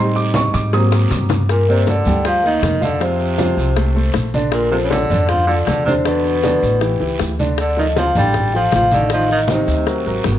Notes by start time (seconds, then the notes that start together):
Already playing: A2 G3 C4 D#4 C6
0.15 D6, high conga, maracas
0.34 C#6, cowbell, high conga, short guiro, maracas
0.53 G#2 D6, cowbell, high conga, short guiro, maracas
0.72 F#3 A#3 C4 D#6, cowbell, high conga, long guiro, maracas
0.92 cowbell, high bongo, maracas
1.10 G2, cowbell, high conga, short guiro, maracas
1.29 low bongo, high conga, short guiro, maracas
1.49 A#2 A#4, high bongo, high conga, long guiro, maracas
1.68 C3 A#3 A#4 C5 D5, high bongo, high conga, maracas
1.87 D3 D5, high bongo, high conga, short guiro, maracas
2.05 D2 G3 G4 G5, high bongo, high conga, low conga, short guiro, maracas
2.25 F3 F5, high bongo, high conga, long guiro, maracas
2.44 D#3 A#3 A#4 D#5 F5, high bongo, high conga, maracas
2.62 F2, high bongo, low bongo, high conga, short guiro, maracas
2.81 D3 F3 F4 D5 F5, high conga, short guiro, maracas
3.01 C3 F3 F4 C5 F5, high bongo, high conga, long guiro, maracas
3.20 high bongo, high conga, maracas
3.38 F3 F4 F5, high bongo, high conga, short guiro, maracas
3.57 C2, high bongo, short guiro, maracas
3.76 A3 A4 C5, high bongo, long guiro, maracas
3.95 A3 A4 C5, high bongo, high conga, maracas
4.14 A#1, high bongo, low bongo, high conga, short guiro, maracas
4.34 D3 D4 D5, high conga, short guiro, maracas
4.52 A#2 A#4, high bongo, long guiro, maracas
4.71 C3 F3 F4 A4 C5, high bongo, high conga, maracas
4.84 C#3 C#5
4.90 D3 D5, high bongo, high conga, short guiro, maracas
5.10 F2 D3 D4 D5, high bongo, high conga, low conga, short guiro, maracas
5.29 F3 F5, high bongo, high conga, low conga, long guiro, maracas
5.47 D3 F3 F4 A4 D5, high bongo, high conga, maracas
5.66 E2 D3 D5, high bongo, low bongo, high conga, short guiro, maracas
5.85 C3 D3 D4 C5 D5, high conga, short guiro, maracas
6.05 B2 D3 D4 B4 D5, high bongo, high conga, long guiro, maracas
6.24 high bongo, high conga, maracas
6.43 D3 D4 D5, high bongo, high conga, short guiro, maracas
6.62 A1, high bongo, short guiro, maracas
6.81 E3 E4 G4, high bongo, high conga, long guiro, maracas
7.00 C#2 E3 E4 G4, high bongo, high conga, maracas
7.19 D2, high bongo, low bongo, high conga, short guiro, maracas
7.39 D3 D4 D5, high conga, short guiro, maracas
7.58 D3 D5, high bongo, high conga, long guiro, maracas
7.77 D#3 F3 F4 A4 D#5, high bongo, high conga, maracas
7.96 F3 F5, high bongo, high conga, short guiro, maracas
8.15 A1 D3 G3 D4 D5 G5, high bongo, high conga, low conga, short guiro, maracas
8.34 high bongo, high conga, low conga, long guiro, maracas
8.54 F3 F4 A4 F5, high bongo, high conga, maracas
8.72 A1 F3 F5, high bongo, low bongo, high conga, short guiro, maracas
8.91 D3 D#3 D#4 D5 D#5, high conga, short guiro, maracas
9.10 D#3 F3 D#4 D#5 F5, high bongo, high conga, long guiro, maracas
9.29 D#3 D#5, high bongo, high conga, maracas
9.48 D#3 D#4 C5 D#5, high bongo, high conga, short guiro, maracas
9.52 C3
9.67 D2, high bongo, short guiro, maracas
9.86 F#3 F#4 A#4, high bongo, high conga, long guiro, maracas
10.06 G#1 F#3 F#4 A#4, high bongo, high conga, maracas
10.24 G1, high bongo, low bongo, high conga, short guiro, maracas